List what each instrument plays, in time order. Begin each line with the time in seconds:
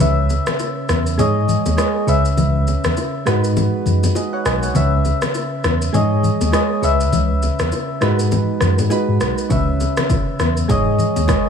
0.00 tine electric piano C#2, synth keys C#3 C#4 B4 E5, low conga, shaker
0.30 low bongo, shaker
0.46 cross-stick, low bongo, shaker
0.59 high bongo, shaker
0.89 tine electric piano E2, cross-stick, high bongo, shaker
1.06 shaker
1.18 tine electric piano G#2, synth keys G#3 G#4 C#5 D#5, low bongo, low conga, shaker
1.48 low conga, shaker
1.66 tine electric piano D#2, low bongo, shaker
1.77 synth keys G#3 G#4 C#5 D#5, cross-stick, high bongo, shaker
2.07 tine electric piano C#2, synth keys C#3 C#4 B4 E5, shaker
2.25 shaker
2.37 tine electric piano C#2, low conga, shaker
2.67 low bongo, shaker
2.84 tine electric piano E2, cross-stick, low bongo, shaker
2.97 high bongo, shaker
3.25 tine electric piano G#2, synth keys G#3 D#4 F#4 B4, cross-stick, high bongo, shaker
3.44 shaker
3.57 low bongo, low conga, shaker
3.86 tine electric piano F#2, low conga, shaker
4.03 low bongo, shaker
4.15 synth keys G#4 D#5, high bongo, shaker
4.33 synth keys C#5 F#5
4.45 tine electric piano B1, synth keys D#5 G#5, cross-stick, shaker
4.63 synth keys C#5 F#5, shaker
4.74 tine electric piano C#2, synth keys C#3 C#4 B4 E5, low conga, shaker
5.05 low bongo, shaker
5.22 cross-stick, low bongo, shaker
5.34 high bongo, shaker
5.64 tine electric piano E2, cross-stick, high bongo, shaker
5.82 shaker
5.93 tine electric piano G#2, synth keys G#3 G#4 C#5 D#5, low bongo, low conga, shaker
6.23 low conga, shaker
6.41 tine electric piano D#2, low bongo, shaker
6.52 synth keys G#3 G#4 C#5 D#5, cross-stick, high bongo, shaker
6.82 tine electric piano C#2, synth keys C#3 C#4 B4 E5, shaker
7.00 shaker
7.12 tine electric piano C#2, low conga, shaker
7.42 low bongo, shaker
7.59 tine electric piano E2, cross-stick, low bongo, shaker
7.72 high bongo, shaker
8.01 tine electric piano G#2, synth keys G#3 D#4 F#4 B4, cross-stick, high bongo, shaker
8.19 shaker
8.32 low bongo, low conga, shaker
8.61 tine electric piano F#2, cross-stick, low conga, shaker
8.78 tine electric piano G#2, low bongo, shaker
8.90 synth keys G#3 D#4 F#4 B4, high bongo, shaker
9.08 tine electric piano G#2
9.21 tine electric piano B1, cross-stick, shaker
9.38 shaker
9.49 tine electric piano C#2, synth keys C#3 C#4 B4 E5, kick, low conga, shaker
9.80 low bongo, shaker
9.97 cross-stick, low bongo, shaker
10.10 kick, high bongo, shaker
10.39 tine electric piano E2, cross-stick, high bongo, shaker
10.57 shaker
10.68 tine electric piano G#2, synth keys G#3 G#4 C#5 D#5, kick, low bongo, low conga, shaker
10.99 low conga, shaker
11.16 tine electric piano D#2, low bongo, shaker
11.28 synth keys G#3 G#4 C#5 D#5, kick, cross-stick, high bongo, shaker